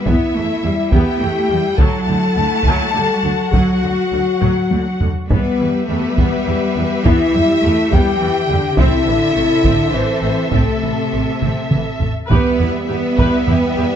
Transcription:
Already playing: viola section E4, violin section E5
0.06 double bass section E2, cello section B3, viola section B3, french horn section E4, violin section E5, taiko
0.35 double bass section E2, viola section E3, cello section A3
0.64 double bass section E2, cello section G3, viola section G3
0.92 double bass section E2, cello section B3, viola section B3, french horn section G4, violin section G5, taiko
1.20 double bass section E2, viola section E3, cello section A3
1.50 double bass section E2, cello section G3, viola section G3
1.77 double bass section D2, cello section F#3, viola section F#3, french horn section A4, violin section F#5 A5, taiko
2.08 double bass section D2, viola section D3
2.36 double bass section D2, viola section D3, cello section A3
2.65 double bass section D2, viola section F#3, taiko
2.94 double bass section D2, viola section D3 F#4, cello section G3
3.23 double bass section D2, viola section D3, cello section F#3
3.52 double bass section D2, cello section F#3, viola section F#3, french horn section F#4, violin section F#5, taiko
3.83 double bass section D2, viola section D3
4.13 double bass section D2, viola section D3
4.42 double bass section D2, viola section F#3, taiko low-mid
4.71 double bass section D2, viola section D3, taiko high
5.01 double bass section D2, viola section D3, taiko low
5.28 double bass section E2, cello section G3, french horn section B3, viola section B3 G4, violin section B4 E5, taiko
5.60 double bass section E2, viola section E3
5.87 double bass section E2, viola section G3, cello section A3, french horn section B3, violin section B4
6.17 double bass section E2, cello section G3, viola section B3, taiko
6.47 double bass section E2, viola section E3
6.76 double bass section E2, viola section G3
7.05 double bass section E2, cello section E3, viola section B3, french horn section E4, violin section E5, taiko
7.34 double bass section E2, viola section E3, cello section G3
7.63 double bass section E2, viola section G3, cello section A3
7.91 double bass section E2, cello section G3, viola section B3, french horn section G4, violin section G5, taiko
8.21 double bass section E2, cello section E3, viola section E3
8.49 double bass section E2, cello section D3, viola section G3
8.78 double bass section A1, cello section C3, viola section C4 A4, french horn section E4, violin section E5, taiko
9.07 double bass section A1, cello section D3, viola section E3
9.35 double bass section A1, cello section C3, viola section A3
9.64 double bass section A1, cello section D3, viola section C4, taiko
9.93 double bass section A1, viola section E3, cello section E3, french horn section C4, violin section C5
10.23 double bass section A1, viola section A3
10.52 double bass section A1, cello section C3, french horn section A3, viola section C4, violin section A4, taiko
10.83 double bass section A1, viola section E3
11.13 double bass section A1, viola section A3
11.42 double bass section A1, viola section C4, taiko mid
11.71 double bass section A1, viola section E3, taiko mid
12.01 double bass section A1, viola section A3, taiko low
12.30 double bass section E2, trombone section E3 G3, cello section B3, viola section G4 B4, french horn section G4 B4, violin section B4 E5, taiko
12.60 double bass section E2, viola section E4 G4, taiko low
12.89 double bass section E2, cello section B3, viola section G4, violin section B4
13.17 double bass section E2, viola section G4 B4, taiko
13.48 double bass section E2, viola section E4 G4, taiko low
13.76 double bass section E2, viola section G4

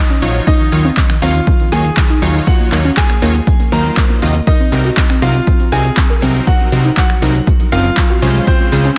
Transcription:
Already playing: grand piano D#4 D#5
0.10 synth pluck C#4
0.22 analog synth bass A#1, synth pluck F3, supersaw synth F#3 D#4 F4 C#5, open hi-hat, cabasa
0.35 synth pluck F3, closed hi-hat, cabasa
0.47 grand piano D#4 D#5, synth pluck D#4, kick, closed hi-hat, cabasa
0.60 synth pluck D#3
0.72 analog synth bass D#2, synth pluck D#3, supersaw synth F#3 D#4 F4 C#5, open hi-hat, cabasa
0.84 synth pluck C4, closed hi-hat, cabasa
0.97 synth pluck D#3, kick, clap, closed hi-hat, cabasa
1.10 synth pluck D#3, finger snap
1.22 analog synth bass D#2, supersaw synth F#3 D#4 F4 C#5, synth pluck C4, grand piano F4 F5, open hi-hat, cabasa
1.35 synth pluck D#3, closed hi-hat, cabasa
1.47 synth pluck D#3, kick, closed hi-hat, cabasa
1.60 synth pluck D#3, closed hi-hat
1.72 analog synth bass D#2, supersaw synth F#3 D#4 F4 C#5, synth pluck A#3, grand piano G#4 G#5, open hi-hat, cabasa
1.85 synth pluck D#3, closed hi-hat, cabasa
1.97 synth pluck D#3, kick, clap, closed hi-hat, cabasa
2.10 synth pluck D#4
2.22 analog synth bass D#2, synth pluck D#3, supersaw synth F#3 D#4 F4 C#5, open hi-hat, cabasa
2.35 synth pluck D#3, closed hi-hat, cabasa
2.47 synth pluck F4, grand piano F#4 F#5, kick, closed hi-hat, cabasa
2.60 synth pluck A#3
2.72 analog synth bass D#2, supersaw synth F#3 D#4 F4 C#5, synth pluck A#3, clap, open hi-hat, cabasa
2.85 synth pluck C#4, closed hi-hat, cabasa
2.97 synth pluck A#3, grand piano G#4 G#5, kick, clap, closed hi-hat, cabasa
3.10 synth pluck A#3, finger snap
3.22 analog synth bass D#2, supersaw synth F#3 D#4 F4 C#5, synth pluck A#3, open hi-hat, cabasa
3.35 synth pluck A#3, closed hi-hat, cabasa
3.47 synth pluck A#3, kick, closed hi-hat, cabasa
3.60 synth pluck A#3, closed hi-hat
3.72 analog synth bass D#2, supersaw synth F#3 D#4 F4 C5, synth pluck A#3, grand piano A#4 A#5, open hi-hat, cabasa
3.85 synth pluck A#3, closed hi-hat, cabasa
3.97 kick, clap, closed hi-hat, cabasa
4.10 synth pluck A#3
4.22 analog synth bass D#2, supersaw synth C3 F#3 D#4 F4 D#5, synth pluck A#3, open hi-hat, cabasa
4.35 synth pluck A#3, closed hi-hat, cabasa
4.47 grand piano D#4 D#5, synth pluck A#4, kick, closed hi-hat, cabasa
4.60 synth pluck C4
4.72 analog synth bass C2, supersaw synth C3 F#3 C4 D#4 A#4, synth pluck C4, open hi-hat, cabasa
4.85 synth pluck F#4, closed hi-hat, cabasa
4.97 synth pluck C4, kick, clap, closed hi-hat, cabasa
5.10 synth pluck C4, finger snap
5.22 analog synth bass C2, supersaw synth C3 F#3 C4 D#4 A#4, grand piano F4 F5, synth pluck F#4, open hi-hat, cabasa
5.34 synth pluck C4, closed hi-hat, cabasa
5.47 synth pluck C4, kick, closed hi-hat, cabasa
5.60 synth pluck C4, closed hi-hat
5.72 analog synth bass C2, supersaw synth C3 F#3 C4 D#4 A#4, synth pluck F4, grand piano G#4 G#5, open hi-hat, cabasa
5.85 synth pluck C4, closed hi-hat, cabasa
5.97 synth pluck C4, kick, clap, closed hi-hat, cabasa
6.10 synth pluck A#4
6.22 analog synth bass C2, supersaw synth C3 F#3 C4 D#4 A#4, synth pluck C4, open hi-hat, cabasa
6.35 synth pluck C4, closed hi-hat, cabasa
6.47 synth pluck F#4, grand piano F#4 F#5, kick, closed hi-hat, cabasa
6.60 synth pluck F#3
6.72 analog synth bass C2, supersaw synth C3 F#3 C4 D#4 A#4, synth pluck F#3, open hi-hat, cabasa
6.85 synth pluck D#4, closed hi-hat, cabasa
6.97 synth pluck F#3, grand piano F#4 F#5, kick, clap, closed hi-hat, cabasa
7.10 synth pluck F#3, finger snap
7.22 analog synth bass C2, supersaw synth C3 F#3 C4 D#4 A#4, synth pluck D#4, open hi-hat, cabasa
7.35 synth pluck F#3, closed hi-hat, cabasa
7.47 synth pluck F#3, kick, closed hi-hat, cabasa
7.60 synth pluck F#3, closed hi-hat
7.72 analog synth bass F#1, supersaw synth C3 F#3 C4 D#4 A#4, synth pluck C4, grand piano F4 F5, open hi-hat, cabasa
7.85 synth pluck F#3, closed hi-hat, cabasa
7.97 kick, clap, closed hi-hat, cabasa
8.10 synth pluck F#4
8.22 analog synth bass C2, supersaw synth C#3 G#3 C#4 F4 C5, synth pluck F#3, open hi-hat, cabasa
8.35 synth pluck F#3, closed hi-hat, cabasa
8.47 grand piano C4 C5, synth pluck F4, kick, closed hi-hat, cabasa
8.60 synth pluck G#3
8.71 analog synth bass C#2, supersaw synth C#3 G#3 C#4 F4 C5, synth pluck G#3, open hi-hat, cabasa
8.85 synth pluck C#4, closed hi-hat, cabasa

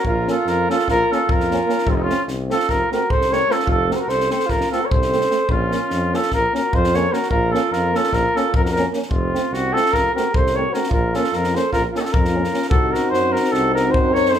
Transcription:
0.04 tuba A#1, alto saxophone F4, flugelhorn A#4, kick
0.27 euphonium A#3 C#4, alto saxophone F4, flugelhorn A4, snare
0.45 tuba F2, flugelhorn A#4, snare
0.49 alto saxophone F4
0.69 euphonium A#3 C#4, alto saxophone F4, flugelhorn A4, snare
0.79 snare
0.88 tuba A#1, alto saxophone F4, flugelhorn A#4, kick, snare
1.11 euphonium A#3 C#4, alto saxophone F4, flugelhorn A4, snare
1.28 tuba F2, alto saxophone F4, flugelhorn A#4, kick
1.40 snare
1.50 euphonium A#3 C#4, snare
1.67 euphonium A#3 C#4, snare
1.78 snare
1.85 tuba F1, alto saxophone C4, kick
1.90 flugelhorn F4
1.95 alto saxophone C4, flugelhorn D#4
2.02 alto saxophone C#4, flugelhorn F4
2.08 euphonium A3 C4, snare
2.28 tuba C2, snare
2.49 euphonium A3 C4, alto saxophone F4, flugelhorn A4, snare
2.60 snare
2.69 tuba F1, alto saxophone F4, flugelhorn A#4, kick, snare
2.91 euphonium A3 C4, alto saxophone F#4, flugelhorn A#4, snare
3.10 tuba C2, alto saxophone A4, flugelhorn C5, kick
3.21 snare
3.30 euphonium A3 C4, alto saxophone A#4, flugelhorn C#5, snare
3.49 euphonium A3 C4, alto saxophone F4, flugelhorn A4, snare
3.60 snare
3.65 tuba F1, alto saxophone F4, kick
3.70 flugelhorn A4
3.88 euphonium A3 C4, alto saxophone F#4, snare
3.92 alto saxophone A4, flugelhorn A#4 C5
3.99 alto saxophone F#4, flugelhorn A#4
4.07 tuba C2, alto saxophone A4, flugelhorn C5, snare
4.20 snare
4.30 euphonium A3 C4, alto saxophone A4, flugelhorn C5, snare
4.40 snare
4.46 tuba F1, alto saxophone F4, flugelhorn A#4, kick, snare
4.61 snare
4.71 euphonium A3 C4, alto saxophone F4, flugelhorn A4, snare
4.82 alto saxophone A#4, flugelhorn C#5
4.91 tuba C2, alto saxophone A4, flugelhorn C5, kick
5.02 snare
5.12 euphonium A3 C4, snare
5.21 snare
5.29 euphonium A3 C4, snare
5.49 tuba A#1, alto saxophone C#4, flugelhorn F4, kick
5.70 euphonium A#3 C#4, snare
5.90 tuba F2, snare
6.13 euphonium A#3 C#4, alto saxophone F4, flugelhorn A4, snare
6.22 snare
6.31 tuba A#1, alto saxophone F4, flugelhorn A#4, kick, snare
6.53 euphonium A#3 C#4, alto saxophone F#4, flugelhorn A#4, snare
6.73 tuba F2, alto saxophone F4, flugelhorn C5, kick
6.84 snare
6.94 euphonium A#3 C#4, alto saxophone A#4, flugelhorn C#5, snare
7.11 euphonium A#3 C#4, alto saxophone F#4, flugelhorn A#4, snare
7.23 snare
7.30 tuba A#1, alto saxophone F4, flugelhorn A#4, kick
7.51 euphonium A#3 C#4, alto saxophone F4, flugelhorn A4, snare
7.71 tuba F2, alto saxophone F4, flugelhorn A#4, snare
7.93 euphonium A#3 C#4, alto saxophone F4, flugelhorn A4, snare
8.04 snare
8.12 tuba A#1, alto saxophone F4, flugelhorn A#4, kick, snare
8.35 euphonium A#3 C#4, alto saxophone F4, flugelhorn A4, snare
8.53 tuba F2, alto saxophone F4, flugelhorn A#4, kick
8.63 alto saxophone F#4, flugelhorn A#4, snare
8.72 alto saxophone F#4, flugelhorn A#4
8.76 euphonium A#3 C#4, snare
8.93 euphonium A#3 C#4, snare
9.03 snare
9.09 tuba F1, alto saxophone C4, flugelhorn F4, kick
9.34 euphonium A3 C4, snare
9.51 tuba C2, alto saxophone C4, flugelhorn F#4, snare
9.73 euphonium A3 C4, alto saxophone F4, flugelhorn A4, snare
9.86 snare
9.92 tuba F1, alto saxophone F4, flugelhorn A#4, kick, snare
10.13 euphonium C4, alto saxophone F#4, flugelhorn A#4, snare
10.18 euphonium A3
10.33 tuba C2, alto saxophone A4, flugelhorn C5, kick
10.47 snare
10.52 euphonium C4, alto saxophone A#4, flugelhorn C#5
10.58 euphonium A3
10.70 euphonium C4, alto saxophone F#4, flugelhorn A#4, snare
10.75 euphonium A3
10.83 snare
10.89 tuba A#1, alto saxophone F4, flugelhorn A#4, kick
11.12 euphonium C#4, alto saxophone F4, flugelhorn A4, snare
11.17 euphonium A#3
11.24 snare
11.31 tuba F2, alto saxophone F4, flugelhorn A#4, snare
11.44 snare
11.54 euphonium A#3 C#4, alto saxophone A4, flugelhorn C5, snare
11.73 tuba A#1, alto saxophone F4, flugelhorn A#4, kick, snare
11.92 euphonium A#3 C#4, alto saxophone F4, snare
11.96 alto saxophone D#4, flugelhorn F#4 A4
12.04 alto saxophone F4, flugelhorn A4, snare
12.11 tuba F2, alto saxophone F4, flugelhorn A#4, kick
12.25 snare
12.34 euphonium A#3 C#4
12.44 snare
12.52 euphonium A#3 C#4, snare
12.62 snare
12.69 tuba C2, euphonium C4 D#4, alto saxophone F#4, flugelhorn A4, kick
12.92 alto saxophone F#4, flugelhorn A#4, snare
13.10 tuba F#2, alto saxophone F#4, flugelhorn C5, snare
13.32 alto saxophone F#4, flugelhorn A#4, snare
13.44 snare
13.52 tuba C2, alto saxophone F#4, flugelhorn A4, snare
13.74 alto saxophone F#4, flugelhorn A#4, snare
13.91 tuba F#2, alto saxophone F#4, flugelhorn C5, kick
14.12 alto saxophone A#4, flugelhorn C#5, snare
14.25 snare
14.30 alto saxophone A4, flugelhorn C5, snare

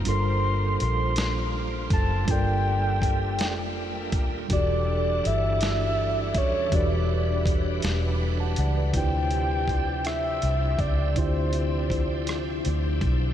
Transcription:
Already playing: tonewheel organ A#3
0.04 fingered electric bass G1, tine electric piano G3 D4 F4 A4, tonewheel organ G3 F4, soft synth lead C6, closed hi-hat
0.09 tine electric piano A#4 C5
0.80 fingered electric bass A#1, soft synth lead C6, closed hi-hat
1.16 snare, closed hi-hat
1.90 fingered electric bass F#1, soft synth lead A5, kick, closed hi-hat
2.26 fingered electric bass G1, tine electric piano G3 D4 F4 A4, tonewheel organ E5, kick, closed hi-hat
2.31 tine electric piano A#4 D5, soft synth lead G5
3.02 kick, closed hi-hat
3.39 fingered electric bass F1, snare, closed hi-hat
4.12 fingered electric bass D#1, kick, closed hi-hat
4.48 fingered electric bass E1, tine electric piano E3 D4 F#4, tonewheel organ E3 D4 A4 F#5, kick, closed hi-hat
4.52 tonewheel organ G3, tine electric piano G4 A4, soft synth lead D5
5.25 fingered electric bass G1, soft synth lead E5, closed hi-hat
5.61 snare, closed hi-hat
6.34 fingered electric bass D#1, soft synth lead C#5, kick, closed hi-hat
6.70 fingered electric bass E1, tine electric piano E3 D4 F#4, tonewheel organ B4, kick, closed hi-hat
6.75 tine electric piano G4 B4, soft synth lead D5
7.46 kick, closed hi-hat
7.82 fingered electric bass E1, snare, closed hi-hat
8.40 tine electric piano F#5 A5
8.56 fingered electric bass C#2, tine electric piano D5 F#5, closed hi-hat
8.77 tine electric piano B4 D5
8.92 fingered electric bass D2, tine electric piano C3 D4 E4, tonewheel organ F3 C4 D4 G4 E5, kick, closed hi-hat
8.96 tine electric piano F4 G4 C5, soft synth lead G5
9.31 closed hi-hat
9.68 kick, closed hi-hat
10.05 soft synth lead E5, cross-stick, closed hi-hat
10.42 fingered electric bass C2, closed hi-hat
10.79 fingered electric bass C#2, soft synth lead D5, kick, closed hi-hat
11.14 fingered electric bass D2, tine electric piano D3 D4 E4, soft synth lead C5, kick, closed hi-hat
11.18 tine electric piano F4 G4 D5
11.53 closed hi-hat
11.90 kick, closed hi-hat
12.27 cross-stick, closed hi-hat
12.65 fingered electric bass D2, closed hi-hat
13.01 fingered electric bass B1, kick, closed hi-hat

